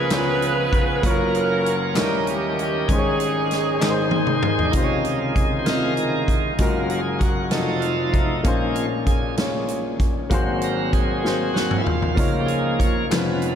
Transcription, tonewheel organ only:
0.00 0.10 G#3 soft
0.00 0.10 G#4 medium
0.10 1.03 F3 medium
0.10 1.04 B3 medium
0.10 1.02 C#4 medium
0.10 0.17 G4 medium
0.18 1.07 G#4 medium
1.04 1.96 F#3 medium
1.04 1.95 C#4 medium
1.04 1.96 F4 medium
1.04 1.96 A#4 medium
1.96 2.87 D#3 medium
1.96 2.87 C#4 medium
1.96 2.02 E4 medium
1.96 2.89 D#5 medium
2.02 2.92 G4 medium
2.88 3.77 D#3 medium
2.88 3.78 G#3 medium
2.88 3.81 C#4 medium
2.88 3.79 G#4 medium
3.79 4.70 D#3 medium
3.79 4.70 G#3 medium
3.79 4.73 G#4 medium
3.79 4.73 C5 medium
4.65 4.73 D4 medium
4.71 6.54 D#3 soft
4.71 6.54 G#3 soft
4.71 5.20 D#4 medium
4.71 5.17 F4 soft
5.18 5.34 F4 medium
5.34 5.57 G#4 medium
5.59 5.66 C5 medium
5.65 5.94 C#3 soft
5.65 5.94 C4 soft
5.65 5.94 F4 soft
5.65 6.24 A#4 medium
6.59 7.00 F#3 soft
6.59 7.01 A#3 soft
6.59 7.01 F5 soft
6.91 7.22 G#4 medium
7.19 7.84 F#4 medium
7.51 8.41 F3 soft
7.51 8.41 A3 soft
7.51 8.11 D#4 medium
7.80 8.14 F4 medium
8.12 8.77 D#4 medium
8.45 8.86 A#2 soft
8.45 8.86 G#3 soft
8.45 8.86 C#4 medium
8.75 8.89 F4 medium
9.07 9.36 G#4 medium
10.29 11.51 G#2 soft
10.29 11.52 F#3 soft
10.29 11.53 C4 medium
10.64 10.92 A#4 medium
10.93 11.57 G#4 medium
11.52 11.82 G#2 soft
11.52 11.82 F#3 soft
11.52 11.83 C4 soft
11.52 11.77 F#4 medium
11.78 11.86 E4 medium
11.84 12.36 F4 medium
12.15 13.05 C#3 soft
12.15 13.06 F3 soft
12.15 13.06 A#3 medium
12.40 12.48 G4 medium
12.46 12.79 G#4 medium
12.79 13.08 C#5 medium
13.10 13.55 F2 medium
13.10 13.55 F3 soft
13.10 13.55 B3 medium

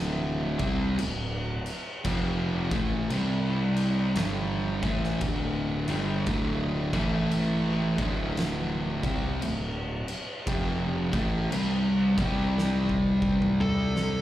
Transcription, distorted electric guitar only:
0.00 0.57 D2 medium
0.00 0.57 A2 medium
0.00 0.58 D3 medium
0.58 0.97 C3 medium
0.58 0.98 G3 loud
0.58 0.98 C4 loud
0.99 1.52 D2 medium
0.99 1.52 A2 medium
2.05 2.69 F2 loud
2.05 2.70 C3 loud
2.05 2.70 F3 loud
2.71 3.09 A2 medium
2.71 3.10 E3 medium
2.71 3.10 A3 loud
3.11 4.15 C3 loud
3.11 4.15 G3 loud
3.11 4.16 C4 loud
4.16 4.81 G2 loud
4.16 4.81 D3 loud
4.16 4.82 G3 loud
4.83 5.21 A2 medium
4.83 5.21 E3 medium
4.83 5.21 A3 loud
5.21 5.86 D2 loud
5.21 5.86 A2 loud
5.21 5.87 D3 loud
5.88 6.26 G2 medium
5.88 6.26 D3 medium
5.88 6.27 G3 loud
6.26 6.93 D2 loud
6.26 6.93 A2 loud
6.26 6.94 D3 loud
6.93 7.96 A2 medium
6.93 7.97 E3 medium
6.93 7.97 A3 loud
7.98 9.01 D2 medium
7.98 9.02 A2 loud
7.98 9.02 D3 loud
9.03 9.41 C3 medium
9.03 9.41 G3 medium
9.03 9.42 C4 loud
9.43 9.95 D2 medium
9.43 9.96 A2 medium
10.47 11.11 F2 medium
10.47 11.11 C3 loud
10.47 11.12 F3 loud
11.12 11.50 A2 medium
11.12 11.51 E3 medium
11.12 11.51 A3 medium
11.51 12.15 C3 medium
11.51 12.15 G3 loud
11.51 12.16 C4 medium
12.17 14.21 C3 medium
12.17 14.21 G3 loud
12.17 14.21 C4 medium

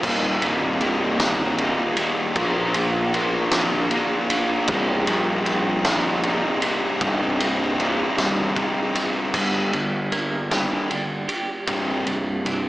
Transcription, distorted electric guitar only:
0.03 0.81 D#2 loud
0.03 0.81 A#2 loud
0.03 0.42 D#3 loud
0.03 0.41 G3 loud
0.03 0.42 A#3 loud
0.03 0.40 D#4 loud
0.41 0.80 D#3 medium
0.41 0.80 G3 medium
0.41 0.82 A#3 medium
0.41 0.81 D#4 medium
0.81 1.20 D#3 medium
0.81 1.19 G3 medium
0.81 1.19 A#3 medium
0.81 1.18 D#4 medium
1.19 1.98 D#2 medium
1.19 1.98 A#2 medium
1.19 1.57 D#3 medium
1.19 1.57 G3 medium
1.19 1.58 A#3 medium
1.19 1.58 D#4 medium
1.58 2.33 D#3 medium
1.58 2.34 G3 medium
1.58 2.34 A#3 medium
1.58 2.34 D#4 medium
2.36 3.13 A#2 loud
2.36 3.14 F3 medium
2.36 2.75 A#3 loud
2.36 2.75 D4 loud
2.36 2.74 F4 loud
2.36 2.73 A#4 loud
2.74 3.13 A#3 medium
2.74 3.13 D4 medium
2.74 3.14 F4 medium
2.74 3.15 A#4 medium
3.14 3.53 A#3 medium
3.14 3.52 D4 medium
3.14 3.52 F4 medium
3.14 3.51 A#4 medium
3.52 4.31 A#2 medium
3.52 4.31 F3 medium
3.52 3.90 A#3 medium
3.52 3.90 D4 medium
3.52 3.91 F4 medium
3.52 3.92 A#4 medium
3.91 4.66 A#3 medium
3.91 4.67 D4 medium
3.91 4.67 F4 medium
3.91 4.67 A#4 medium
4.69 5.86 C2 loud
4.69 5.45 G2 loud
4.69 5.08 C3 loud
4.69 5.08 G3 loud
4.69 5.07 D#4 loud
5.07 5.46 C3 medium
5.07 5.47 G3 medium
5.07 5.47 D#4 medium
5.46 5.85 G2 medium
5.46 5.85 C3 medium
5.46 5.85 G3 medium
5.46 5.84 D#4 medium
5.85 6.63 C2 medium
5.85 6.22 G2 medium
5.85 6.23 C3 medium
5.85 6.24 G3 medium
5.85 6.24 D#4 loud
6.23 6.99 G2 medium
6.23 6.99 C3 medium
6.23 7.02 G3 medium
6.23 7.00 D#4 medium
7.01 7.79 C2 loud
7.01 7.78 G2 loud
7.01 7.41 C3 loud
7.01 7.40 G3 loud
7.01 7.39 D#4 loud
7.40 7.79 C3 medium
7.40 7.79 G3 medium
7.40 7.80 D#4 medium
7.79 8.18 G2 medium
7.79 8.18 C3 medium
7.79 8.17 G3 medium
7.79 8.17 D#4 medium
8.18 8.97 C2 medium
8.18 8.55 G2 medium
8.18 8.56 C3 medium
8.18 8.57 G3 medium
8.18 8.58 D#4 loud
8.57 9.32 G2 medium
8.57 9.33 C3 medium
8.57 9.33 G3 medium
8.57 9.33 D#4 medium
9.35 9.71 G2 medium
9.35 9.71 D3 medium
9.35 9.71 G3 loud
9.73 10.08 G2 medium
9.73 10.08 D3 medium
10.12 10.47 G2 medium
10.12 10.47 D3 medium
10.51 10.88 G2 medium
10.51 10.88 D3 medium
10.51 10.88 G3 loud
10.90 11.25 G2 medium
10.90 11.25 D3 medium
11.68 12.04 C2 medium
11.68 12.04 G2 medium
11.68 12.05 C3 loud
12.06 12.41 C2 medium
12.06 12.42 G2 medium
12.45 12.69 C2 medium
12.45 12.69 G2 medium

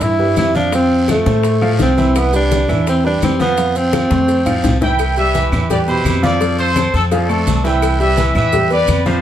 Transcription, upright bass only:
0.00 0.33 G2 medium
0.36 1.20 F2 medium
1.26 1.76 A2 loud
1.79 2.63 C2 medium
2.68 3.18 E2 loud
3.22 4.05 F2 medium
4.10 4.60 F2 loud
4.63 5.46 C2 medium
5.52 6.02 E2 loud
6.05 6.88 F2 loud
6.94 7.43 F2 loud
7.47 8.29 C2 loud
8.35 8.84 E2 loud
8.88 9.21 F2 loud

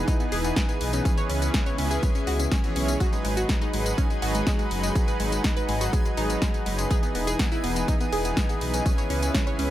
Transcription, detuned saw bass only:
0.32 0.52 E1 loud
0.81 1.01 B1 medium
1.30 1.49 C#2 loud
1.78 1.98 C#2 medium
2.27 2.47 C#2 medium
2.76 2.96 B1 loud
3.25 3.45 G#1 loud
3.74 3.93 G#1 medium
4.22 4.42 G#1 medium
4.71 4.91 F#1 medium
5.20 5.40 G#1 loud
5.69 5.88 G#1 medium
6.17 6.37 G#1 medium
6.66 6.86 F#1 medium
7.15 7.35 E1 loud
7.64 7.84 E1 medium
8.13 8.32 E1 loud
8.61 8.81 B1 medium
9.10 9.30 C#2 loud
9.59 9.70 C#2 medium

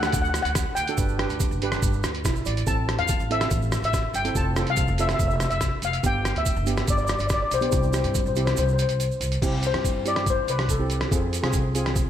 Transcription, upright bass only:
0.14 0.41 D2 loud
0.45 0.63 D2 medium
0.77 0.95 D2 medium
0.97 1.25 G1 loud
1.30 1.53 D2 medium
1.51 1.78 G1 loud
1.82 2.00 G1 loud
2.03 2.22 D2 medium
2.25 2.44 B1 medium
2.46 2.65 A1 medium
2.67 2.94 A1 loud
2.99 3.22 E2 medium
3.20 3.47 A1 loud
3.51 3.78 A1 loud
3.82 4.00 A1 medium
4.14 4.32 G1 loud
4.35 4.62 F1 loud
4.66 4.90 C2 medium
4.88 5.15 F1 loud
5.19 5.47 F1 loud
5.51 5.69 F1 medium
5.82 6.01 F1 medium
6.04 6.31 G1 loud
6.35 6.58 D2 loud
6.57 6.84 G1 loud
6.88 7.15 G1 loud
7.20 7.38 G1 medium
7.51 7.69 B1 medium
7.73 8.00 C2 loud
8.04 8.27 G2 medium
8.26 8.53 C2 loud
8.57 8.85 C2 loud
8.89 9.07 C2 medium
9.20 9.39 C2 medium
9.42 9.69 C2 medium
9.74 10.37 G2 medium
10.47 11.02 C2 medium
11.11 11.38 F2 medium
11.42 12.06 C2 medium

